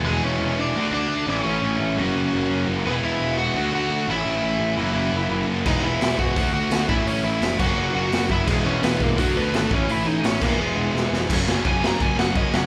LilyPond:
<<
  \new Staff \with { instrumentName = "Overdriven electric guitar" } { \time 4/4 \key e \lydian \tempo 4 = 171 <gis gis'>8 <cis' cis''>4 <d' d''>4 <d' d''>4 <cis' cis''>8~ | <cis' cis''>2.~ <cis' cis''>8 r8 | <b b'>8 <e' e''>4 <fis' fis''>4 <fis' fis''>4 <e' e''>8~ | <e' e''>2.~ <e' e''>8 r8 |
<dis' dis''>8 <e' e''>4 <fis' fis''>4 <fis' fis''>4 <e' e''>8 | <cis' cis''>8 <e' e''>4 <fis' fis''>4 <fis' fis''>4 <e' e''>8 | <gis gis'>8 <cis' cis''>8 <b b'>8 <ais ais'>8 <fis fis'>8 <b b'>8 <a a'>8 <cis' cis''>8 | <e' e''>8 <dis' dis''>8 <cis' cis''>8 <ais ais'>8 <gis gis'>4. r8 |
r4 gis''8 ais''8 gis''8 fis''8 dis''8 fis''8 | }
  \new Staff \with { instrumentName = "Distorted electric guitar" } { \time 4/4 \key e \lydian <e gis b e'>2 <d a d' fis'>4. <a, e a cis' e'>8~ | <a, e a cis' e'>4. <fis ais cis' fis'>2~ <fis ais cis' fis'>8 | <e gis b e'>2 <d a d' fis'>4. <a, e a cis' e'>8~ | <a, e a cis' e'>4. <fis ais cis' fis'>2~ <fis ais cis' fis'>8 |
<e gis b e'>2 <d a d' fis'>4. <a, e a cis' e'>8~ | <a, e a cis' e'>4. <fis ais cis' fis'>2~ <fis ais cis' fis'>8 | <e gis b e'>2 <d a d' fis'>4. <a, e a cis' e'>8~ | <a, e a cis' e'>4. <e gis b e'>2~ <e gis b e'>8 |
<fis, cis fis ais cis'>8 <fis, cis fis ais cis'>8 <fis, cis fis ais cis'>8 <fis, cis fis ais cis'>8 <fis, cis fis ais cis'>8 <fis, cis fis ais cis'>8 <fis, cis fis ais cis'>8 <fis, cis fis ais cis'>8 | }
  \new Staff \with { instrumentName = "Distorted electric guitar" } { \time 4/4 \key e \lydian <e gis b e'>2 <d a d' fis'>4. <a, e a cis' e'>8~ | <a, e a cis' e'>4. <fis ais cis' fis'>2~ <fis ais cis' fis'>8 | <e gis b e'>2 <d a d' fis'>4. <a, e a cis' e'>8~ | <a, e a cis' e'>4. <fis ais cis' fis'>2~ <fis ais cis' fis'>8 |
<e gis b e'>2 <d a d' fis'>4. <a, e a cis' e'>8~ | <a, e a cis' e'>4. <fis ais cis' fis'>2~ <fis ais cis' fis'>8 | <e gis b e'>2 <d a d' fis'>4. <a, e a cis' e'>8~ | <a, e a cis' e'>4. <e gis b e'>2~ <e gis b e'>8 |
<fis, cis fis ais cis'>8 <fis, cis fis ais cis'>8 <fis, cis fis ais cis'>8 <fis, cis fis ais cis'>8 <fis, cis fis ais cis'>8 <fis, cis fis ais cis'>8 <fis, cis fis ais cis'>8 <fis, cis fis ais cis'>8 | }
  \new Staff \with { instrumentName = "Picked electric bass" } { \clef bass \time 4/4 \key e \lydian e,,8 e,,8 e,,4 d,8 d,8 d,8 a,,8 | a,,8 a,,8 a,,8 fis,,8 fis,,8 fis,,8 fis,,8 fis,,8 | e,,8 e,,8 e,,4 d,8 d,8 d,8 a,,8 | a,,8 a,,8 a,,8 fis,,8 fis,,8 fis,,8 fis,,8 fis,,8 |
e,,8 e,,8 e,,4 d,8 d,8 d,8 a,,8 | a,,8 a,,8 eis,,8 fis,,8 fis,,8 fis,,8 fis,,8 fis,,8 | e,,8 e,,8 e,,4 d,8 d,8 gis,,8 a,,8 | a,,8 a,,8 a,,8 e,,8 e,,8 e,,8 e,,8 eis,,8 |
fis,,8 fis,,8 fis,,4 fis,,8 fis,,8 fis,,8 fis,,8 | }
  \new DrumStaff \with { instrumentName = "Drums" } \drummode { \time 4/4 r4 r4 r4 r4 | r4 r4 r4 r4 | r4 r4 r4 r4 | r4 r4 r4 r4 |
<cymc bd>4 <hho sn>8 bd8 <hho bd>4 <hho sn>8 bd8 | hho4 <hho sn>8 <cymc bd>8 r4 <hho sn>8 bd8 | <cymc bd>4 <hho sn>8 bd8 <hho bd>4 <hho sn>8 bd8 | hho4 <hho sn>8 <cymc bd>8 r4 sn8 sn8 |
<cymc bd>8 sn8 <cymc bd>8 sn8 <cymc bd>8 sn8 <cymc bd>8 sn8 | }
>>